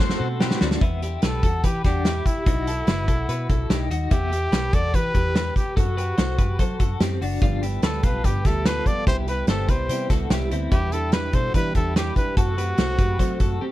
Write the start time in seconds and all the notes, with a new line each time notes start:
Already playing: E2 A4 C5 F#5 C6
0.00 F#3 A3 C4 F#4 A4 C5
0.10 snare
0.20 B2 A3 C4 F#4 A4
0.40 F#3 A3 C4 F#4 G4 B4, snare
0.44 F#4
0.51 snare
0.61 D2 A3 C4 D4 F#4, snare
0.71 snare
0.81 E2 B3 E4, kick, closed hi-hat
1.03 E4 G4, closed hi-hat
1.22 B1 G4 A4 B4, snare, closed hi-hat
1.43 E2 F#4 A4, kick, closed hi-hat
1.64 E3 G4 B4, kick, closed hi-hat
1.84 E2 D4 F#4 G4, kick, snare, closed hi-hat
2.05 E4 G4, snare, closed hi-hat
2.26 E4, kick, closed hi-hat
2.46 B1 D#4 F#4, kick, closed hi-hat
2.67 F#4 A4, closed hi-hat
2.87 F#1 F#4 B4, snare, closed hi-hat
3.08 B1 F#4 A4, kick, closed hi-hat
3.29 B2 F#4 B4, closed hi-hat
3.49 B1 F#4 A4, kick, closed hi-hat
3.69 B1 D#4 G4, snare, closed hi-hat
3.90 D#2 D#4 F#4, closed hi-hat
4.11 E2 B3 E4 G4, kick, closed hi-hat
4.32 E4 G4, closed hi-hat
4.52 B1 G4 B4, snare, closed hi-hat
4.73 E2 F#4 A4 D5, kick, closed hi-hat
4.94 E3 G4 B4, kick, closed hi-hat
5.14 E2 E4 G4, kick, closed hi-hat
5.35 G4 B4, snare, closed hi-hat
5.56 G4, kick, closed hi-hat
5.76 F#2 F#4 A4, kick, closed hi-hat
5.97 G4 B4, closed hi-hat
6.18 C2 A4 C5, snare, closed hi-hat
6.38 F#2 G4 B4, kick, closed hi-hat
6.59 F#3 A4 C5, kick, closed hi-hat
6.80 F#2 F#4 A4, kick, closed hi-hat
7.00 F#2 C4 G4, snare, closed hi-hat
7.21 F#1 D4 F#4, open hi-hat
7.41 G1 G2 D3 F3 G3 B3 D4 F4 G4, kick, closed hi-hat
7.61 F3 G3 B3 E4 G4, closed hi-hat
7.82 D2 G4 A4 B4, snare, closed hi-hat
8.03 B1 F3 G3 B3 F4 G4 A4 B4, kick, closed hi-hat
8.23 G2 D3 F3 G3 B3 G4 B4, kick, closed hi-hat
8.43 D2 F3 G3 B3 E4 G4 A4, kick, snare, closed hi-hat
8.64 F3 G3 B3 F4 G4 A4 B4, snare, closed hi-hat
8.86 F3 G3 B3 G4 D5, kick, closed hi-hat
9.06 C2 C3 E3 G3 B3 E4 G4 C5, kick, closed hi-hat
9.27 G3 B3 E4 G4 B4, closed hi-hat
9.47 G1 E3 G3 B3 G4 A4 C5, snare, closed hi-hat
9.51 E4
9.68 C2 G3 B3 E4 G4 B4 C5, kick, closed hi-hat
9.89 C3 E3 G3 B3 E4 G4 C5, closed hi-hat
10.09 C2 G3 B3 E4 F#4 A4, kick, snare, closed hi-hat
10.29 C2 E3 G3 B3 E4 G4, snare, closed hi-hat
10.50 D2 G3 B3 C4 E4, closed hi-hat
10.71 E2 B2 E3 G3 B3 D4 E4 G4, kick, closed hi-hat
10.91 E3 G3 D4 E4 G4 A4, closed hi-hat
11.12 E3 G3 D4 E4 G4 B4, snare, closed hi-hat
11.32 B2 E3 G3 D4 E4 F#4 A4 C5, kick, closed hi-hat
11.53 E2 B2 E3 G3 D4 E4 G4 B4, kick, closed hi-hat
11.73 E2 E3 G3 D4 E4 G4 A4, kick, closed hi-hat
11.94 E3 G3 D4 E4 G4 B4, snare, closed hi-hat
12.15 E3 G3 D4 E4 B4, kick, closed hi-hat
12.36 F#2 F#3 A3 C4 F#4 A4, kick, closed hi-hat
12.57 A3 C4 F#4 G4 B4, closed hi-hat
12.77 C2 F#3 A3 C4 F#4 A4 C5, snare, closed hi-hat
12.98 F#2 A3 C4 F#4 G4 B4, kick, closed hi-hat
13.19 F#3 A3 C4 F#4 A4 C5, kick, closed hi-hat
13.39 F#2 A3 C4 F#4 A4, kick, closed hi-hat
13.60 F#3 A3 C4 F#4 G4